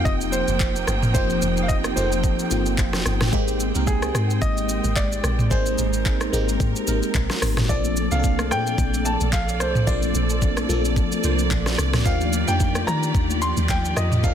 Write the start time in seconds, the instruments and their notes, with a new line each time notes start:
Already playing: fm electric piano F3 A#3 C4 D#4 F4 G4, string section F3 A#3 C4 D#4 G5
0.05 log drum bass F1, grand piano D#5, kick, shaker
0.21 shaker
0.32 grand piano C5, shaker
0.48 log drum bass F1, shaker
0.60 kick, clap, shaker
0.76 shaker
0.87 log drum bass G1, cross-stick, shaker
1.03 mid tom, shaker
1.14 log drum bass F1, fm electric piano F3 A#3 C4 D#4 G4, grand piano C5, kick, shaker
1.30 shaker
1.42 log drum bass F1, shaker
1.57 shaker
1.63 grand piano F5
1.68 grand piano D#5, kick, shaker
1.84 cross-stick, shaker
1.96 log drum bass F1, fm electric piano F3 A#3 C4 D#4 A4, grand piano C5, shaker
2.12 shaker
2.24 kick, shaker
2.39 shaker
2.50 log drum bass G1, fm electric piano F3 A#3 C4 D#4 F4, shaker
2.66 shaker
2.78 log drum bass F1, kick, clap, shaker
2.93 cross-stick, snare, shaker
3.06 log drum bass G1, cross-stick, shaker
3.21 cross-stick, snare, mid tom, shaker
3.32 log drum bass G#1, fm electric piano G#3 A#3 C4 D#4 G4, string section G#3, kick, shaker
3.48 shaker
3.60 shaker
3.74 log drum bass C2, fm electric piano G#3 A#3 C4 D#4 A#4, shaker
3.87 grand piano G#4, kick, shaker
4.02 cross-stick, shaker
4.15 log drum bass G#2, cross-stick, shaker
4.30 shaker
4.42 log drum bass G#1, grand piano D#5, kick, shaker
4.57 shaker
4.69 shaker
4.84 log drum bass G#1, shaker
4.96 grand piano D5, kick, clap, shaker
5.12 shaker
5.24 log drum bass A#1, cross-stick, shaker
5.39 mid tom, shaker
5.50 log drum bass G#1, fm electric piano G#3 A#3 C4 D#4 G#4, string section A#4, grand piano C5, kick, shaker
5.66 shaker
5.78 log drum bass G#1, shaker
5.93 shaker
6.06 kick, clap, shaker
6.21 cross-stick, shaker
6.32 log drum bass G#1, fm electric piano G#3 A#3 C4 D#4 G4, shaker
6.49 shaker
6.60 log drum bass G#2, kick, shaker
6.76 shaker
6.87 log drum bass G#1, fm electric piano G#3 A#3 C4 D#4 A#4, shaker
7.02 shaker
7.15 log drum bass A#1, kick, clap, shaker
7.30 cross-stick, snare, shaker
7.42 log drum bass G#1, cross-stick, open hi-hat, shaker
7.57 log drum bass G1, cross-stick, snare, mid tom, shaker
7.69 log drum bass A#1, fm electric piano F3 A#3 C4 D4 A4, string section A#3 A4 D5, grand piano D5, kick, low conga, shaker
7.84 high conga, shaker
7.96 high conga, shaker
8.11 log drum bass C2, fm electric piano F3 A#3 C4 D4 G#4, grand piano F5, shaker
8.19 fm electric piano A4
8.24 kick, low conga, shaker
8.39 cross-stick, high conga, shaker
8.51 log drum bass A#2, grand piano G5, cross-stick, high conga, low conga, shaker
8.67 shaker
8.78 log drum bass A#1, kick, shaker
8.94 high conga, shaker
9.05 grand piano A5, shaker
9.21 log drum bass A#1, high conga, shaker
9.33 grand piano F5, kick, clap, shaker
9.49 shaker
9.60 log drum bass C2, grand piano C5, cross-stick, shaker
9.75 mid tom, shaker
9.87 log drum bass A#1, fm electric piano F3 A#3 C4 D4 C5, grand piano D5, kick, low conga, shaker
10.02 high conga, shaker
10.15 log drum bass A#1, high conga, shaker
10.30 shaker
10.42 kick, low conga, shaker
10.57 cross-stick, high conga, shaker
10.69 log drum bass A#1, fm electric piano F3 A#3 C4 D4 A4, high conga, low conga, shaker
10.85 shaker
10.96 kick, shaker
11.12 high conga, shaker
11.23 log drum bass C2, fm electric piano F3 A#3 C4 D4 C5, shaker
11.39 high conga, shaker
11.51 log drum bass A#1, kick, clap, shaker
11.66 cross-stick, snare, shaker
11.78 log drum bass C2, cross-stick, shaker
11.93 cross-stick, snare, mid tom, shaker
12.05 log drum bass D#2, string section D#3 F4 G4, fm electric piano F3 A#3 D4 D#4 G4, grand piano F5, kick, low conga, shaker
12.21 high conga, shaker
12.33 high conga, shaker
12.47 log drum bass F2, fm electric piano F3 A#3 D4 D#4 G4, grand piano G5, shaker
12.60 kick, low conga, shaker
12.75 cross-stick, high conga, shaker
12.87 log drum bass D#3, grand piano A#5, cross-stick, high conga, low conga, shaker
13.03 shaker
13.15 log drum bass D#2, kick, shaker
13.30 high conga, shaker
13.42 grand piano C6, shaker
13.57 log drum bass D#2, high conga, shaker
13.69 grand piano G5, kick, clap, shaker
13.85 shaker
13.96 log drum bass F2, grand piano D#5, cross-stick, shaker
14.12 mid tom, shaker
14.23 log drum bass D#2, fm electric piano F3 A#3 D4 D#4 A4, grand piano F5, kick, low conga, shaker